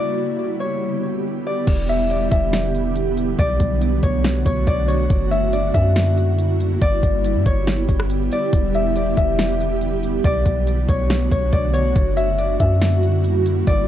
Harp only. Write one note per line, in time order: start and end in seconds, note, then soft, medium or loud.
0.00 0.66 D5 loud
0.00 0.60 E5 medium
0.60 1.53 C#5 medium
1.47 2.10 D5 medium
1.89 2.31 E5 medium
2.11 3.39 D5 medium
2.31 4.03 E5 medium
3.39 4.09 D5 loud
4.03 4.45 C#5 medium
4.46 4.73 C#5 medium
4.67 4.94 D5 medium
4.88 5.59 C#5 medium
5.31 5.74 E5 medium
5.53 6.81 D5 medium
5.74 7.46 E5 medium
6.82 7.52 D5 loud
7.46 8.38 C#5 medium
8.32 8.96 D5 medium
8.75 9.17 E5 medium
8.96 10.25 D5 medium
9.17 10.89 E5 medium
10.25 10.95 D5 loud
10.89 11.31 C#5 medium
11.32 11.59 C#5 medium
11.53 11.79 D5 medium
11.73 12.45 C#5 medium
12.17 12.59 E5 medium
12.39 13.67 D5 medium
12.60 13.88 E5 medium
13.67 13.88 D5 loud